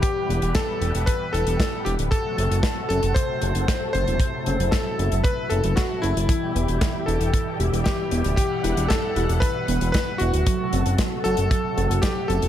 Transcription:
Already playing: analog synth pad E3 G3 B3 G4 B4
0.02 electric grand piano G4, kick, closed hi-hat
0.29 analog synth bass E1, closed hi-hat
0.42 analog synth bass E1, closed hi-hat
0.55 electric grand piano A4, kick, snare, closed hi-hat
0.81 analog synth bass E1, closed hi-hat
0.95 analog synth bass E1, closed hi-hat
1.06 electric grand piano B4, kick, closed hi-hat
1.33 analog synth bass E1, electric grand piano A4, closed hi-hat
1.47 analog synth bass E1, closed hi-hat
1.60 kick, snare, closed hi-hat
1.85 analog synth bass E1, electric grand piano G4, closed hi-hat
1.99 analog synth bass D1, closed hi-hat
2.11 analog synth pad C3 F#3 A3 F#4 A4, electric grand piano A4, kick, closed hi-hat
2.38 analog synth bass F#1, closed hi-hat
2.51 analog synth bass F#1, closed hi-hat
2.63 kick, snare, closed hi-hat
2.89 analog synth bass F#1, electric grand piano A4, closed hi-hat
3.03 analog synth bass F#1, closed hi-hat
3.14 electric grand piano C5, kick, closed hi-hat
3.42 analog synth bass F#1, closed hi-hat
3.55 analog synth bass F#1, closed hi-hat
3.68 kick, snare, closed hi-hat
3.93 analog synth bass F#1, electric grand piano C5, closed hi-hat
4.08 analog synth bass E1, closed hi-hat
4.20 analog synth pad E4, kick, closed hi-hat
4.46 analog synth bass F#1, closed hi-hat
4.60 analog synth bass F#1, closed hi-hat
4.71 electric grand piano A4, kick, snare, closed hi-hat
4.99 analog synth bass F#1, closed hi-hat
5.12 analog synth bass F#1, closed hi-hat
5.24 electric grand piano B4, kick, closed hi-hat
5.50 analog synth bass F#1, electric grand piano A4, closed hi-hat
5.64 analog synth bass F#1, closed hi-hat
5.76 electric grand piano F#4, kick, snare, closed hi-hat
6.02 analog synth bass F#1, electric grand piano E4, closed hi-hat
6.16 analog synth bass F#1, closed hi-hat
6.29 analog synth pad B2 E3 G3 E4 G4, synth arpeggio sound E3, kick, closed hi-hat
6.55 analog synth bass E1, synth arpeggio sound B3, closed hi-hat
6.68 analog synth bass E1, closed hi-hat
6.81 synth arpeggio sound E3, kick, snare, closed hi-hat
7.06 analog synth bass E1, synth arpeggio sound E4, electric grand piano A4, closed hi-hat
7.20 analog synth bass E1, closed hi-hat
7.34 synth arpeggio sound E3, kick, closed hi-hat
7.60 analog synth bass E1, synth arpeggio sound G4, closed hi-hat
7.73 analog synth bass E1, closed hi-hat
7.84 synth arpeggio sound E3, electric grand piano G4, kick, snare, closed hi-hat
8.11 analog synth bass E1, synth arpeggio sound B3, closed hi-hat
8.24 analog synth bass D1, closed hi-hat
8.36 synth arpeggio sound E3, electric grand piano G4, analog synth pad F#5, kick, closed hi-hat
8.64 analog synth bass E1, synth arpeggio sound E4, closed hi-hat
8.77 analog synth bass E1, closed hi-hat
8.88 synth arpeggio sound E3, electric grand piano A4, kick, snare, closed hi-hat
9.16 analog synth bass E1, synth arpeggio sound G4, closed hi-hat
9.29 analog synth bass E1, closed hi-hat
9.40 synth arpeggio sound E3, electric grand piano B4, kick, closed hi-hat
9.68 analog synth bass E1, synth arpeggio sound B3, closed hi-hat
9.81 analog synth bass E1, closed hi-hat
9.92 synth arpeggio sound E3, electric grand piano B4, kick, snare, closed hi-hat
10.18 analog synth bass E1, synth arpeggio sound E4, electric grand piano F#4, closed hi-hat
10.34 analog synth bass D1, closed hi-hat
10.46 analog synth pad C3 F#3 A3 F#4 A4, synth arpeggio sound F#3, kick, closed hi-hat
10.73 analog synth bass F#1, synth arpeggio sound C4, closed hi-hat
10.86 analog synth bass F#1, closed hi-hat
10.98 synth arpeggio sound F#3, kick, snare, closed hi-hat
11.24 analog synth bass F#1, synth arpeggio sound F#4, electric grand piano A4, closed hi-hat
11.37 analog synth bass F#1, closed hi-hat
11.51 synth arpeggio sound F#3, kick, closed hi-hat
11.77 analog synth bass F#1, synth arpeggio sound A4, closed hi-hat
11.90 analog synth bass F#1, closed hi-hat
12.02 synth arpeggio sound F#3, electric grand piano G4, kick, snare, closed hi-hat
12.28 analog synth bass F#1, synth arpeggio sound C4, electric grand piano A4, closed hi-hat
12.42 analog synth bass E1, closed hi-hat

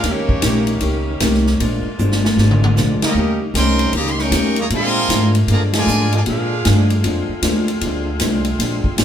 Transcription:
Already playing: saxophone section A#3
0.03 upright bass D#2, hollow-body jazz guitar D#3 A#3 C#4, trombone section G3 A#3 C#4, saxophone section G3 C#4 D#4, snare, ride
0.07 trumpet section A#3 D#4 G4 C#5, hollow-body jazz guitar G4
0.29 kick
0.42 upright bass A#1, hollow-body jazz guitar D#3 A#3 C#4 G4, snare, hi-hat pedal, ride
0.67 ride
0.81 upright bass C#2, hollow-body jazz guitar D#3 A#3 C#4 G4, ride
1.20 upright bass C2, hollow-body jazz guitar D#3 A#3 C#4 G4, snare, hi-hat pedal, ride
1.34 snare
1.46 snare
1.59 upright bass A#1, hollow-body jazz guitar A#2 F3 G#3 D4, saxophone section D3 G#3 F4, ride
1.85 muted upright bass stroke
1.99 upright bass G1, hollow-body jazz guitar A#2 F3 G#3 D4, hi-hat pedal
2.12 snare
2.25 snare
2.37 upright bass G#1, hollow-body jazz guitar A#2 F3, snare
2.41 hollow-body jazz guitar G#3 D4
2.51 mid tom
2.64 mid tom
2.76 upright bass A#1, hollow-body jazz guitar A#2 F3 G#3 D4, snare, hi-hat pedal
3.00 trombone section G3 A#3, muted upright bass stroke, snare, ride
3.05 trumpet section C#4 G4 A#4 D#5, trombone section D#4
3.13 upright bass D#2, saxophone section D#3 G3 D#4, hollow-body jazz guitar D#3 A#3
3.18 hollow-body jazz guitar C#4 G4
3.54 upright bass C2, hollow-body jazz guitar D#3 A#3 C#4 G4, trombone section G3 C4 C#4, trumpet section A#4 D#5 G5 C6, snare, hi-hat pedal, ride
3.79 ride
3.92 upright bass C#2, trombone section C#3 G3, hollow-body jazz guitar D#3 A#3 C#4, trumpet section G4 C#5 D#5 A#5, ride
3.96 trombone section A#3, hollow-body jazz guitar G4
4.06 trumpet section C6, snare
4.19 trombone section G3 A#3 C#4, trumpet section A#4 D#5 G5 C#6, snare
4.31 upright bass D#2, hollow-body jazz guitar D#3 A#3 C#4 G4, snare, hi-hat pedal, ride
4.56 trombone section C#3 G3 A#3, trumpet section G4 D#5, ride
4.60 trumpet section C#5 A#5
4.70 upright bass A#2, hollow-body jazz guitar A#2 F3, saxophone section D3 A#3 F4 G#4, trombone section F3 G#3 C4, ride
4.74 hollow-body jazz guitar G#3 D4, trumpet section A#4 F5 G#5 C6
5.08 upright bass G#2, hollow-body jazz guitar A#2 F3 G#3 D4, snare, hi-hat pedal, ride
5.35 ride
5.47 upright bass G2, hollow-body jazz guitar A#2 F3 G#3, trombone section D3 F3 A#3, trumpet section G#4 D5 F5 A#5, ride
5.52 hollow-body jazz guitar D4
5.73 trombone section D3 F3 G#3, trumpet section F4 A#4 D5 G#5, snare, ride
5.87 upright bass G#2, hollow-body jazz guitar A#2 F3 G#3 D4, hi-hat pedal
6.12 trombone section D3 F3 G#3, trumpet section F4 A#4 D5 G#5, ride
6.26 hollow-body jazz guitar A#2 F3 G#3 D4, upright bass A#2, trombone section D4 F4 G#4, trumpet section D4 G#4, ride
6.30 trumpet section A#4 F5
6.65 upright bass G2, hollow-body jazz guitar A#2 F3 G#3 D4, snare, hi-hat pedal, ride
6.90 ride
7.04 upright bass F2, hollow-body jazz guitar A#2 F3 G#3 D4, saxophone section C4, ride
7.29 muted upright bass stroke
7.42 upright bass D#2, hollow-body jazz guitar A#2 F3 G#3 D4, snare, hi-hat pedal, ride
7.68 ride
7.81 upright bass D2, hollow-body jazz guitar A#2 F3 G#3, ride
7.85 hollow-body jazz guitar D4
8.20 upright bass C2, hollow-body jazz guitar A#2 F3 G#3 D4, snare, hi-hat pedal, ride
8.45 ride
8.58 upright bass A#1, hollow-body jazz guitar A#2 F3 G#3 D4, snare, ride
8.84 muted upright bass stroke, kick
8.97 upright bass G#1, hollow-body jazz guitar A#2 F3 G#3 D4, snare, hi-hat pedal, ride

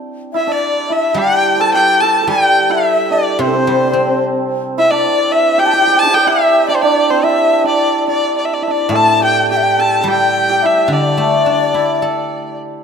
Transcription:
Already playing: hammered dulcimer C4 D4 E4 G4
0.33 hammered dulcimer E4, xiao E5, erhu E5
0.47 hammered dulcimer D4, xiao D5
0.52 erhu D5
0.88 hammered dulcimer E4, xiao E5, erhu E5
1.14 guzheng G3, hammered dulcimer G4, xiao G5
1.19 erhu G5
1.58 hammered dulcimer A4 C5, xiao A5, erhu A5
1.73 hammered dulcimer G4, erhu G5, xiao G5
2.01 hammered dulcimer A4, erhu A5, xiao A5
2.22 hammered dulcimer A4, xiao A5
2.27 guzheng G3, hammered dulcimer G4, erhu G5, xiao G5
2.64 xiao G5
2.70 hammered dulcimer E4, erhu E5, xiao E5
3.10 hammered dulcimer D4, erhu D5, xiao D5
3.39 guzheng C3, hammered dulcimer C4, xiao C5, erhu C5
3.47 hammered dulcimer C4, xiao A4
3.55 hammered dulcimer C4, xiao C5
3.62 hammered dulcimer C4
3.67 guzheng G3, hammered dulcimer C4
3.76 hammered dulcimer C4
3.84 hammered dulcimer C4
3.92 hammered dulcimer C4, guzheng C4
3.99 hammered dulcimer C4
4.07 hammered dulcimer C4
4.78 hammered dulcimer E4, xiao E5, erhu E5
4.90 hammered dulcimer D4, erhu D5, xiao D5
5.32 erhu E5, xiao E5
5.58 hammered dulcimer G4, xiao G5, erhu G5
5.66 hammered dulcimer G4, xiao A5
5.73 hammered dulcimer G4, xiao G5
5.81 hammered dulcimer G4
5.87 hammered dulcimer G4
5.95 hammered dulcimer G4, xiao A5
5.99 hammered dulcimer G4, erhu A5
6.06 xiao D4 E4
6.12 hammered dulcimer G4, xiao G5, erhu G5
6.16 xiao A4 C5
6.24 hammered dulcimer E4, xiao D5 E5
6.28 erhu E5
6.67 hammered dulcimer D4, xiao D5 E5, erhu D5
6.73 erhu C5, xiao D5
6.81 hammered dulcimer D4, xiao D5, erhu D5
7.10 hammered dulcimer C4, xiao C5, erhu C5
7.23 hammered dulcimer E4, xiao E5, erhu E5
7.29 xiao D5
7.39 xiao E5
7.59 xiao E5
7.64 hammered dulcimer D4, erhu D5, xiao D5
8.07 hammered dulcimer D4, xiao D5, erhu D5
8.37 erhu D5
8.45 erhu E5
8.54 erhu D5
8.62 hammered dulcimer E4, erhu E5
8.67 hammered dulcimer D4, xiao D5, erhu D5
8.89 guzheng A2, hammered dulcimer A4
8.94 xiao A5, erhu A5
9.20 hammered dulcimer G4, xiao G5, erhu G5
9.51 hammered dulcimer G4, erhu G5, xiao G5
9.57 xiao E5
9.63 xiao G5
9.79 hammered dulcimer A4, erhu A5
10.01 guzheng G3, hammered dulcimer A4, erhu A5
10.06 hammered dulcimer G4, xiao G5, erhu G5
10.48 hammered dulcimer G4, xiao G5
10.62 hammered dulcimer E4, xiao E5, erhu E5
10.88 guzheng D3, xiao D5
10.92 hammered dulcimer D4, erhu D5
11.17 guzheng A3
11.46 guzheng D4
11.74 guzheng E4
12.02 guzheng A4

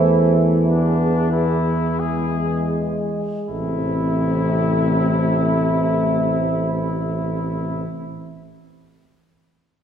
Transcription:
Already playing: tuba E2, trombone E3, euphonium A3, cornet E4, french horn section C5
0.69 euphonium B3, cornet D4, french horn section G#4
1.32 cornet E4
2.00 euphonium G#3, cornet G#4
3.48 tuba A1, trombone C3, euphonium A3, french horn section C4, cornet E4

